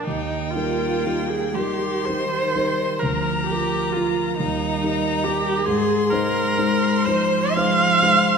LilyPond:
<<
  \new Staff \with { instrumentName = "Violin" } { \time 6/8 \key ees \major \tempo 4. = 43 g''4. c'''4. | bes''4. bes''4. | c'''2. | }
  \new Staff \with { instrumentName = "Viola" } { \time 6/8 \key ees \major ees'8 f'8. aes'16 g'8 c''4 | bes'8 g'8 f'8 ees'4 g'8 | aes'8 bes'4 c''8 f''4 | }
  \new Staff \with { instrumentName = "Grand piano" } { \time 6/8 \key ees \major ees,8 <g ees' bes'>8 <g ees' bes'>8 <g ees' bes'>8 <g ees' bes'>8 <g ees' bes'>8 | d,8 <f f' bes'>8 <f f' bes'>8 ees,8 <g ees' bes'>8 <g ees' bes'>8 | aes,8 <aes ees' c''>8 <aes ees' c''>8 <aes ees' c''>8 <aes ees' c''>8 <aes ees' c''>8 | }
  \new Staff \with { instrumentName = "Cello" } { \clef bass \time 6/8 \key ees \major bes4. ees4. | f4. g4. | aes4. f4. | }
>>